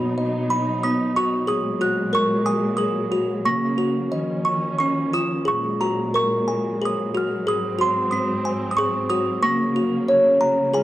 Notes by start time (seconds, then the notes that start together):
Already playing: B2 F#3 B3 D#4 F#4 B5
0.18 D#5
0.50 B5
0.83 B3 D#6
1.16 F#4 C#6
1.47 A#2 F#3 G#3 G#4 D#6
1.81 F#4 F#6
2.13 A#4 C#6
2.46 G#5 D#6
2.77 G#4 D#6
3.12 F#4
3.45 C#3 A#3 C#6
3.78 F#4
4.11 D#3 F3 C#4 D#5
4.45 C#6
4.79 C#4 C#6
5.13 F4 D#6
5.45 A#2 F#3 G#3 G#4 C#6
5.81 F#4 A#5
6.14 A#4 C#6
6.48 G#5
6.82 G#4 D#6
7.14 F#4 F6
7.47 G#2 C4 G#4 D#6
7.79 F#4 C6
8.11 C4 D#6
8.45 G#5
8.71 D#6
8.77 G#4 C#6
9.09 F#4 D#6
9.41 C#3 A#3 C#6
9.76 F#4
10.08 C#5
10.41 A#5
10.73 G#3 F4 G#4 G#5